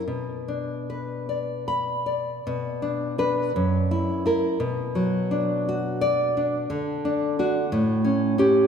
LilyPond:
\new Staff \with { instrumentName = "Nylon-string guitar" } { \time 6/8 \key b \minor \tempo 4. = 56 << { r2 b''4 | r4 b'8 r4 ais'8 | r2 d''4 | r4 fis'8 r4 g'8 | } \\ { b,8 d'8 b'8 d''4 d''8 | b,8 d'8 d'8 fis,8 e'8 e'8 | b,8 fis8 d'8 fis'4 d'8 | d8 d'8 d'8 a,8 cis'8 cis'8 | } >> }